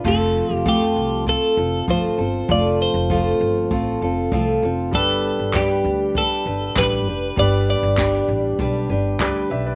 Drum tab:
CC |x-------|--------|--------|--------|
CP |--------|--------|--x---x-|--x---x-|
BD |o-o-o-o-|o-o-o-o-|o-o-o-o-|o-o-o-o-|